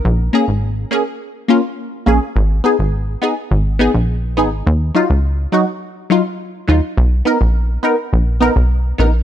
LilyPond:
<<
  \new Staff \with { instrumentName = "Synth stab" } { \time 4/4 \key ees \minor \tempo 4 = 104 r8 <bes des' aes'>8 r8 <bes des' aes'>8 r8 <bes des' f'>8 r8 <bes des' aes'>8 | r8 <ces' ees' aes'>8 r8 <ces' ees' aes'>8 r8 <ces' ees' aes'>8 r8 <ces' ees' aes'>8 | r8 <ges ees' f'>8 r8 <ges ees' ges'>8 r8 <ges ees' f'>8 r8 <ges ees' f'>8 | r8 <b dis' ais'>8 r8 <b dis' ais'>8 r8 <b dis' ais'>8 r8 <b dis' ais'>8 | }
  \new Staff \with { instrumentName = "Analog synth bass" } { \clef bass \time 4/4 \key ees \minor bes,,8 r16 aes,,8. r2 bes,,16 r16 | aes,,8 r16 aes,,8. r8 aes,,8. bes,,8. aes,,8 | ees,8 r16 des,8. r2 ees,16 r16 | b,,8 r16 ais,,8. r8 ais,,8. b,,8. ais,,8 | }
>>